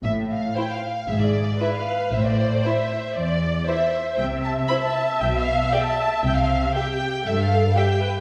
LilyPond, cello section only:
\new Staff \with { instrumentName = "Cello section" } { \clef bass \time 4/4 \key a \minor \tempo 4 = 117 a,4 r4 gis,4 r4 | a,4 r4 e,4 r4 | c4 r4 b,4 r4 | c4 r4 g,4 r4 | }